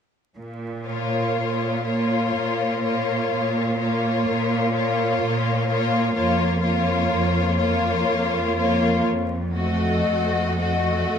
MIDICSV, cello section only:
0, 0, Header, 1, 2, 480
1, 0, Start_track
1, 0, Key_signature, -5, "minor"
1, 0, Tempo, 1001669
1, 173, Time_signature, 3, 2, 24, 8
1, 1127, Tempo, 955414
1, 3527, Tempo, 974026
1, 4487, Tempo, 1029160
1, 5471, End_track
2, 0, Start_track
2, 0, Title_t, "Cello section"
2, 0, Program_c, 0, 48
2, 174, Note_on_c, 0, 46, 27
2, 603, Note_off_c, 0, 46, 0
2, 661, Note_on_c, 0, 46, 30
2, 1073, Note_off_c, 0, 46, 0
2, 1130, Note_on_c, 0, 46, 29
2, 1559, Note_off_c, 0, 46, 0
2, 1616, Note_on_c, 0, 46, 33
2, 2040, Note_off_c, 0, 46, 0
2, 2098, Note_on_c, 0, 46, 37
2, 2515, Note_off_c, 0, 46, 0
2, 2569, Note_on_c, 0, 46, 40
2, 2990, Note_off_c, 0, 46, 0
2, 3044, Note_on_c, 0, 41, 39
2, 3468, Note_off_c, 0, 41, 0
2, 3521, Note_on_c, 0, 41, 44
2, 3945, Note_off_c, 0, 41, 0
2, 3998, Note_on_c, 0, 41, 42
2, 4426, Note_off_c, 0, 41, 0
2, 4481, Note_on_c, 0, 41, 39
2, 4900, Note_off_c, 0, 41, 0
2, 4955, Note_on_c, 0, 41, 39
2, 5386, Note_off_c, 0, 41, 0
2, 5440, Note_on_c, 0, 41, 32
2, 5471, Note_off_c, 0, 41, 0
2, 5471, End_track
0, 0, End_of_file